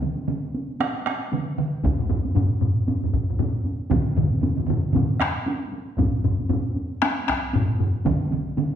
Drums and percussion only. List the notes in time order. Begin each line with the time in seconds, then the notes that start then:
0.02 taiko mid, taiko high
0.18 taiko high
0.28 taiko mid, taiko high
0.44 taiko high
0.54 taiko high
0.70 taiko high
0.80 taiko rim, taiko high
0.95 taiko high
1.06 taiko rim, taiko high
1.22 taiko high
1.32 taiko mid, taiko high
1.48 taiko high
1.58 taiko mid
1.74 taiko high
1.83 taiko, taiko low-mid, taiko high
1.99 taiko low-mid, taiko high
2.09 taiko low-mid, taiko high
2.25 taiko high
2.35 taiko low-mid, taiko high
2.51 taiko high
2.61 taiko low-mid, taiko high
2.78 taiko high
2.88 taiko low-mid, taiko high
3.04 taiko low-mid, taiko high
3.13 taiko, taiko low-mid, taiko high
3.30 taiko low-mid, taiko high
3.39 taiko low-mid, taiko high
3.56 taiko high
3.66 taiko high
3.81 taiko high
3.90 taiko, taiko low-mid, taiko mid, taiko high
4.17 taiko low-mid, taiko mid
4.33 taiko high
4.41 taiko low-mid, taiko mid, taiko high
4.57 taiko low-mid, taiko mid, taiko high
4.67 taiko low-mid, taiko mid, taiko high
4.84 taiko high
4.93 taiko low-mid, taiko mid, taiko high
5.10 taiko high
5.20 taiko rim, taiko high
5.22 taiko rim
5.36 taiko high
5.46 taiko high
5.62 taiko high
5.72 taiko high
5.87 taiko high
5.98 taiko, taiko low-mid, taiko high
6.15 taiko high
6.24 taiko low-mid, taiko high
6.40 taiko high
6.49 taiko low-mid, taiko high
6.66 taiko high
6.76 taiko high
6.92 taiko high
7.02 taiko rim, taiko high
7.18 taiko high
7.28 taiko rim, taiko, taiko high
7.44 taiko high
7.53 taiko low-mid, taiko high
7.69 taiko high
7.80 taiko low-mid, taiko high
7.95 taiko high
8.05 taiko, taiko mid, taiko high
8.21 taiko high
8.31 taiko mid, taiko high
8.57 taiko mid, taiko high